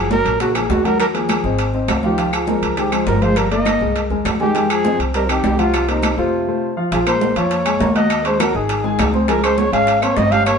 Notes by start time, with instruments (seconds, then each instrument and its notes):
Already playing: upright bass F#1, trombone F3, trumpet G#4
0.11 trombone F#3, grand piano A#3 A#4 C#5, trumpet A#4, high bongo, high conga, low timbale
0.25 upright bass A#1, high timbale
0.40 trombone C#3, grand piano A#3 A#4 C#5, trumpet F#4, high bongo, high conga, high timbale
0.55 trombone F3, grand piano A#3 A#4 C#5, trumpet G#4, high conga, high timbale, claves
0.69 upright bass D#2, trombone C#3, trumpet F#4, high bongo, low bongo, high conga, low timbale
0.84 trombone F#3, grand piano F#3 F#4 F#5, trumpet A#4, high conga, high timbale
0.99 trombone F#3, trumpet A#4, high bongo, high conga, high timbale, claves
1.13 trombone F3, grand piano A#3 A#4 C#5, trumpet G#4, high conga, high timbale
1.29 high bongo, high conga, high timbale, low timbale, claves
1.44 upright bass G#1, grand piano C4 C5 D#5, high bongo, high conga
1.59 high bongo, high conga, high timbale
1.74 grand piano C4 C5 D#5, high bongo, high conga
1.88 upright bass C#2, high bongo, low bongo, high conga, high timbale, low timbale, claves
2.03 trombone D#3, grand piano F3 F4 F5, trumpet G4, high bongo, high conga
2.18 grand piano F3 F4 F5, high bongo, high timbale
2.33 trombone F3, trumpet G#4, high conga, high timbale, claves
2.47 trombone F3, grand piano G#3 G#4 C5, trumpet A#4, high bongo, high conga, low timbale
2.62 upright bass C#2, high timbale
2.77 trombone D#3, grand piano G#3 G#4 C5, trumpet G4, high bongo, high conga, high timbale
2.92 trombone F3, grand piano G#3 G#4 C5, trumpet G#4, high conga, high timbale, claves
3.06 upright bass G1, trombone F3, trumpet A#4, high bongo, low bongo, high conga, low timbale
3.21 grand piano F3 F4 F5, trombone G#3, trumpet C5, high conga, high timbale
3.36 trombone G3, trumpet A#4, high bongo, high conga, high timbale, claves
3.51 trombone A#3, grand piano A#3 A#4 C#5, trumpet D#5, high conga, high timbale
3.65 high bongo, high conga, high timbale, low timbale, claves
3.80 upright bass C2, grand piano G#3 G#4 A#4, high bongo, high conga
3.95 high bongo, high conga, high timbale
4.10 upright bass D#2, grand piano G#3 G#4 A#4, high bongo, high conga
4.25 upright bass F2, high bongo, low bongo, high conga, high timbale, low timbale, claves
4.40 trombone D#3, grand piano G#3 G#4 G#5, trumpet G4, high bongo, high conga
4.55 grand piano G#3 G#4 G#5, high bongo, high conga, high timbale
4.70 trombone F3, trumpet G#4, high conga, high timbale, claves
4.84 grand piano C4 C5 D#5, high bongo, high conga, low timbale
4.99 upright bass C2, high conga, high timbale
5.14 trombone G3, grand piano C4 C5 D#5, trumpet A#4, high bongo, high conga, high timbale
5.29 trombone D#3, grand piano C4 C5 D#5, trumpet G4, high conga, high timbale, claves
5.44 upright bass C2, high bongo, low bongo, high conga, low timbale
5.59 trombone C3, grand piano F#3 F#4 F#5, trumpet F4, high conga, high timbale
5.74 high bongo, high timbale, claves
5.88 trombone C3, grand piano A#3 A#4 C5, trumpet D#4, high conga, high timbale
6.03 high bongo, high conga, high timbale, low timbale, claves
6.17 upright bass F2, trombone C3, grand piano A3 A4 C5, trumpet F4, high bongo, high conga
6.47 grand piano A3 A4 C5
6.77 grand piano F3 F4 F5
6.92 upright bass A#1, grand piano F3 F4 F5, trombone F3, trumpet G#4, high bongo, high conga, high timbale
7.06 trombone G#3, grand piano A#3 A#4 A#5, trumpet C5, high conga, high timbale, claves
7.21 high bongo, high conga, low timbale
7.36 upright bass F2, grand piano F3 F4 F5, trombone A#3, trumpet C#5, high conga, high timbale
7.51 high bongo, high conga, high timbale
7.66 grand piano G#3 G#4 G#5, high conga, high timbale, claves
7.80 upright bass D#2, grand piano A#3 A#4 A#5, high bongo, low bongo, high conga, low timbale
7.95 trombone A#3, grand piano F#4 F#5 F#6, trumpet D#5, high conga, high timbale
8.10 high bongo, high conga, high timbale, claves
8.25 trombone G#3, grand piano C#4 C#5 C#6, trumpet C5, high timbale
8.40 grand piano F#3 F#4 F#5, trombone F#3, trumpet A#4, high bongo, high conga, high timbale, low timbale, claves
8.54 upright bass G#1, trombone D#3, grand piano D#4 D#5 D#6, trumpet G#4, high bongo, high conga
8.69 high bongo, high conga, high timbale
8.84 grand piano G#3 G#4 G#5, high bongo, high conga
8.98 upright bass C#2, high bongo, low bongo, high conga, high timbale, low timbale, claves
9.13 grand piano C4 C5 C6, high bongo, high conga
9.28 trombone F3, grand piano G#3 G#4 G#5, trumpet A#4, high bongo, high timbale
9.43 trombone G#3, grand piano C#4 C#5 C#6, trumpet C5, high conga, high timbale, claves
9.58 trombone G#3, trumpet C#5, high bongo, high conga, low timbale
9.72 upright bass G#1, grand piano G#3 G#4 G#5, trombone C#4, trumpet F5, high conga, high timbale
9.87 high bongo, high conga, high timbale
10.02 trombone A#3, grand piano C4 C5 C6, trumpet C#5, high conga, high timbale, claves
10.16 upright bass G1, trombone C4, grand piano C#4 C#5 C#6, trumpet D#5, high bongo, low bongo, high conga, low timbale
10.31 trombone C#4, grand piano G4 G5 G6, trumpet F5, high conga, high timbale
10.46 trombone A#3, trumpet C#5, high bongo, high conga, high timbale, claves